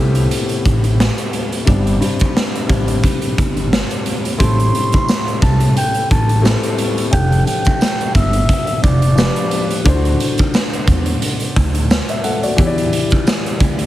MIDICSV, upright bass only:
0, 0, Header, 1, 2, 480
1, 0, Start_track
1, 0, Key_signature, 0, "minor"
1, 0, Tempo, 681818
1, 1178, Time_signature, 4, 2, 24, 8
1, 9758, End_track
2, 0, Start_track
2, 0, Title_t, "Upright bass"
2, 0, Program_c, 0, 32
2, 0, Note_on_c, 0, 36, 94
2, 169, Note_off_c, 0, 36, 0
2, 464, Note_on_c, 0, 33, 89
2, 757, Note_off_c, 0, 33, 0
2, 1181, Note_on_c, 0, 31, 110
2, 1370, Note_off_c, 0, 31, 0
2, 1900, Note_on_c, 0, 33, 93
2, 2089, Note_off_c, 0, 33, 0
2, 2384, Note_on_c, 0, 31, 91
2, 2677, Note_off_c, 0, 31, 0
2, 3101, Note_on_c, 0, 33, 110
2, 3290, Note_off_c, 0, 33, 0
2, 3819, Note_on_c, 0, 36, 90
2, 4009, Note_off_c, 0, 36, 0
2, 4303, Note_on_c, 0, 33, 100
2, 4596, Note_off_c, 0, 33, 0
2, 5020, Note_on_c, 0, 29, 115
2, 5209, Note_off_c, 0, 29, 0
2, 5739, Note_on_c, 0, 31, 94
2, 5929, Note_off_c, 0, 31, 0
2, 6224, Note_on_c, 0, 29, 96
2, 6517, Note_off_c, 0, 29, 0
2, 6940, Note_on_c, 0, 38, 111
2, 7129, Note_off_c, 0, 38, 0
2, 7659, Note_on_c, 0, 40, 90
2, 7849, Note_off_c, 0, 40, 0
2, 8144, Note_on_c, 0, 38, 92
2, 8437, Note_off_c, 0, 38, 0
2, 8861, Note_on_c, 0, 40, 106
2, 9050, Note_off_c, 0, 40, 0
2, 9580, Note_on_c, 0, 38, 93
2, 9758, Note_off_c, 0, 38, 0
2, 9758, End_track
0, 0, End_of_file